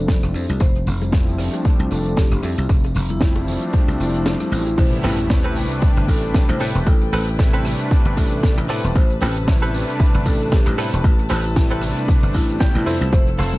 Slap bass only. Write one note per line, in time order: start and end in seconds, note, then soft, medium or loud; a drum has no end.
0.00 0.17 F1 medium
0.23 0.32 F1 medium
0.35 0.46 F2 medium
0.49 0.58 C2 loud
0.61 0.81 F1 loud
0.87 1.48 F1 medium
1.65 muted slap bass stroke soft
1.80 1.88 C2 loud
1.91 2.26 F1 medium
2.32 2.40 F1 medium
2.44 2.54 F2 medium
2.58 2.67 C2 loud
2.69 2.90 F1 loud
2.95 3.57 F1 medium
3.88 3.97 C2 loud
4.00 4.35 F1 medium
4.52 4.72 A1 medium
4.78 4.98 A1 loud
5.04 5.65 A1 medium
5.82 muted slap bass stroke soft
5.97 6.06 G1 loud
6.08 6.43 A1 medium
6.49 6.58 A1 medium
6.61 6.72 A2 medium
6.75 6.84 E1 loud
6.87 7.07 A1 loud
7.12 7.74 A1 medium
8.05 8.14 G1 loud
8.17 8.52 A1 medium
8.58 8.67 A1 medium
8.69 8.80 A2 medium
8.84 8.93 E1 loud
8.96 9.16 A1 loud
9.22 9.83 A1 medium
10.00 muted slap bass stroke soft
10.15 10.23 G1 loud
10.26 10.61 A1 medium
10.67 10.75 A1 medium
10.78 10.89 A2 medium
10.93 11.02 E1 loud
11.04 11.25 A1 loud
11.31 11.92 A1 medium
12.23 12.32 G1 loud
12.35 12.70 A1 medium
12.75 12.84 A1 medium
12.87 12.98 F2 medium
13.01 13.10 C2 loud
13.13 13.33 F1 loud
13.39 13.58 F1 medium